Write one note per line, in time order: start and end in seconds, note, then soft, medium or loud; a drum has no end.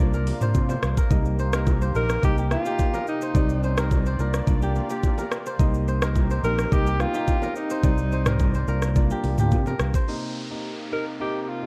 0.00 0.30 C2 loud
0.00 7.80 C3 medium
0.00 0.38 A#3 loud
0.00 3.31 A#3 medium
0.00 0.38 D4 medium
0.00 0.38 F4 medium
0.00 1.09 F4 medium
0.00 0.14 A#4 medium
0.00 0.41 C5 medium
0.00 0.38 D5 loud
0.00 1.08 D5 medium
0.13 0.97 A#4 medium
0.13 shaker medium
0.27 open hi-hat soft
0.27 low bongo medium
0.27 shaker soft
0.41 0.62 A#3 medium
0.41 0.62 D4 medium
0.41 0.62 F4 medium
0.41 0.69 C5 medium
0.41 0.62 D5 medium
0.41 mid tom medium
0.41 shaker medium
0.54 0.75 C3 loud
0.54 kick medium
0.54 high bongo medium
0.54 shaker medium
0.69 1.39 C5 medium
0.69 low bongo medium
0.69 shaker medium
0.82 0.93 C2 medium
0.82 cross-stick loud
0.82 shaker medium
0.97 1.53 A#4 medium
0.97 kick loud
0.97 shaker medium
1.10 1.91 C2 loud
1.10 1.50 A#3 medium
1.10 1.50 D#4 medium
1.10 4.16 D#4 medium
1.10 3.33 G4 medium
1.10 1.50 G4 medium
1.10 1.50 D#5 loud
1.10 kick loud
1.10 low conga medium
1.10 shaker medium
1.25 shaker soft
1.39 1.81 C5 medium
1.39 shaker soft
1.53 1.91 A#3 medium
1.53 1.92 D#4 medium
1.53 1.92 G4 medium
1.53 1.95 A#4 medium
1.53 1.92 D#5 medium
1.53 cross-stick loud
1.53 shaker loud
1.66 kick loud
1.66 high bongo medium
1.66 low conga medium
1.66 shaker medium
1.81 3.00 C5 medium
1.81 shaker medium
1.95 2.15 A#1 medium
1.95 2.21 A#3 medium
1.95 2.21 D#4 medium
1.95 2.21 G4 medium
1.95 2.94 A#4 medium
1.95 2.22 A#4 loud
1.95 2.21 D#5 medium
1.95 shaker medium
2.09 cross-stick medium
2.09 shaker medium
2.22 2.54 C2 loud
2.22 2.62 A#3 loud
2.22 2.62 D#4 medium
2.22 2.62 G4 medium
2.22 2.37 G4 loud
2.22 2.62 D#5 loud
2.22 kick loud
2.22 low conga medium
2.22 shaker medium
2.38 2.66 G4 medium
2.38 shaker medium
2.51 3.04 F4 loud
2.51 cross-stick medium
2.51 low bongo medium
2.51 shaker soft
2.65 2.86 A#3 medium
2.65 2.86 D#4 medium
2.65 2.86 G4 medium
2.65 4.07 G4 medium
2.65 2.86 D#5 medium
2.65 shaker medium
2.79 kick medium
2.79 high bongo medium
2.79 shaker medium
2.94 3.78 A#4 medium
2.94 low bongo medium
2.94 shaker medium
3.07 3.88 D#4 medium
3.07 shaker medium
3.22 3.63 C5 medium
3.22 shaker medium
3.35 4.15 C2 loud
3.35 4.18 C4 medium
3.35 3.74 C4 medium
3.35 3.74 D#4 medium
3.35 3.74 G4 medium
3.35 5.57 D5 medium
3.35 3.74 D5 loud
3.35 kick loud
3.35 low conga medium
3.35 shaker medium
3.49 shaker soft
3.63 4.06 C5 medium
3.63 shaker soft
3.77 4.16 C4 medium
3.77 4.16 D#4 medium
3.77 4.16 G4 medium
3.77 4.20 A#4 medium
3.77 4.16 D5 medium
3.77 cross-stick loud
3.77 shaker loud
3.91 kick loud
3.91 high bongo medium
3.91 low conga medium
3.91 shaker medium
4.06 5.25 C5 medium
4.06 shaker medium
4.19 4.40 C2 loud
4.19 4.45 A#3 medium
4.19 5.58 A#3 medium
4.19 4.45 D4 medium
4.19 5.58 F4 medium
4.19 4.45 F4 medium
4.19 5.18 A#4 medium
4.19 4.45 D5 medium
4.19 shaker medium
4.34 cross-stick medium
4.34 shaker medium
4.47 4.79 C2 loud
4.47 4.86 A#3 loud
4.47 4.86 D4 medium
4.47 4.86 F4 medium
4.47 4.86 D5 loud
4.47 kick loud
4.47 low conga medium
4.47 shaker medium
4.62 4.90 G4 medium
4.62 shaker medium
4.76 low bongo medium
4.76 shaker soft
4.90 5.10 A#3 medium
4.90 5.10 D4 medium
4.90 5.11 F4 medium
4.90 6.32 G4 medium
4.90 5.11 D5 medium
4.90 shaker medium
5.03 kick medium
5.03 high bongo medium
5.03 shaker medium
5.18 6.02 A#4 medium
5.18 low bongo medium
5.18 shaker medium
5.32 cross-stick loud
5.32 shaker medium
5.46 5.88 C5 medium
5.46 shaker medium
5.59 6.40 C2 loud
5.59 5.98 A#3 loud
5.59 8.64 C4 medium
5.59 8.65 D#4 medium
5.59 5.98 D#4 medium
5.59 7.81 G4 medium
5.59 5.98 G4 medium
5.59 5.99 D#5 loud
5.59 kick loud
5.59 low conga medium
5.59 shaker medium
5.74 shaker soft
5.88 6.30 C5 medium
5.88 shaker soft
6.02 6.40 A#3 medium
6.02 6.40 D#4 medium
6.02 6.40 G4 medium
6.02 6.44 A#4 medium
6.02 6.41 D#5 medium
6.02 cross-stick loud
6.02 shaker loud
6.15 kick loud
6.15 high bongo medium
6.15 low conga medium
6.15 shaker medium
6.30 7.50 C5 medium
6.30 shaker medium
6.43 6.64 A#1 medium
6.43 6.69 A#3 medium
6.43 6.69 D#4 medium
6.43 6.70 G4 medium
6.43 7.43 A#4 medium
6.43 6.74 A#4 loud
6.43 6.70 D#5 medium
6.43 shaker medium
6.58 cross-stick medium
6.58 shaker medium
6.71 7.03 C2 loud
6.71 7.11 A#3 loud
6.71 7.11 D#4 medium
6.71 7.11 G4 medium
6.71 7.02 G4 loud
6.71 7.11 D#5 loud
6.71 kick loud
6.71 low conga medium
6.71 shaker medium
6.87 7.15 G4 medium
6.87 shaker medium
7.00 7.56 F4 loud
7.00 cross-stick medium
7.00 low bongo medium
7.00 shaker soft
7.14 7.35 A#3 medium
7.14 7.35 D#4 medium
7.14 7.35 G4 medium
7.14 8.56 G4 medium
7.14 7.35 D#5 medium
7.14 shaker medium
7.27 kick medium
7.27 high bongo medium
7.27 shaker medium
7.42 8.27 A#4 medium
7.42 low bongo medium
7.42 shaker medium
7.56 8.36 D#4 medium
7.56 shaker soft
7.70 8.12 C5 medium
7.70 shaker medium
7.83 8.64 C2 loud
7.83 10.05 C3 medium
7.83 8.23 C4 loud
7.83 8.23 D#4 medium
7.83 8.23 G4 medium
7.83 8.67 D5 medium
7.83 8.23 D5 loud
7.83 kick loud
7.83 low conga medium
7.83 shaker medium
7.98 shaker soft
8.12 8.55 C5 medium
8.12 shaker soft
8.26 8.64 C4 medium
8.26 8.65 D#4 medium
8.26 8.65 G4 medium
8.26 8.68 A#4 medium
8.26 8.65 D5 medium
8.26 cross-stick loud
8.26 mid tom loud
8.26 shaker loud
8.39 kick loud
8.39 high bongo medium
8.39 low conga medium
8.39 shaker medium
8.54 9.74 C5 medium
8.54 shaker medium
8.67 9.09 C2 loud
8.67 10.06 A#3 medium
8.67 8.94 A#3 medium
8.67 10.06 D4 medium
8.67 8.94 D4 medium
8.67 10.06 F4 medium
8.67 8.94 F4 medium
8.67 9.67 A#4 medium
8.67 8.94 D5 medium
8.67 shaker medium
8.82 cross-stick medium
8.82 shaker medium
8.95 9.35 A#3 loud
8.95 9.35 D4 medium
8.95 9.35 F4 medium
8.95 9.35 D5 loud
8.95 kick loud
8.95 low conga medium
8.95 shaker medium
9.10 9.39 G4 medium
9.10 shaker medium
9.24 9.34 C2 medium
9.24 open hi-hat soft
9.24 low bongo medium
9.24 shaker soft
9.38 9.53 D2 medium
9.38 9.59 A#3 medium
9.38 9.59 D4 medium
9.38 9.59 F4 medium
9.38 10.81 G4 medium
9.38 9.59 D5 medium
9.38 mid tom medium
9.38 shaker medium
9.51 9.72 C3 loud
9.51 kick medium
9.51 high bongo medium
9.51 shaker medium
9.66 10.95 A#4 medium
9.66 low bongo medium
9.66 shaker medium
9.80 9.90 C2 loud
9.80 cross-stick loud
9.80 shaker medium
9.94 11.14 C5 medium
9.94 kick loud
9.94 shaker medium
10.08 11.66 C3 medium
10.08 10.47 C3 medium
10.08 11.66 A#3 medium
10.08 10.47 A#3 medium
10.08 11.66 D#4 medium
10.08 10.47 D#4 medium
10.08 11.66 G4 medium
10.08 10.47 G4 medium
10.08 10.47 D#5 medium
10.08 downlifter medium
10.50 10.89 C3 medium
10.50 10.89 A#3 medium
10.50 10.89 D#4 medium
10.50 10.89 G4 medium
10.50 10.89 D#5 medium
10.92 11.18 C3 medium
10.92 11.18 A#3 medium
10.92 11.18 D#4 medium
10.92 11.18 G4 medium
10.92 11.05 A#4 loud
10.92 11.18 D#5 medium
11.20 11.59 C3 medium
11.20 11.59 A#3 medium
11.20 11.59 D#4 medium
11.20 11.59 G4 medium
11.20 11.42 G4 medium
11.20 11.59 D#5 loud
11.42 11.50 G4 medium
11.49 11.66 F4 loud
11.62 11.66 C3 medium
11.62 11.66 A#3 medium
11.62 11.66 D#4 medium
11.62 11.66 G4 medium
11.62 11.66 D#5 medium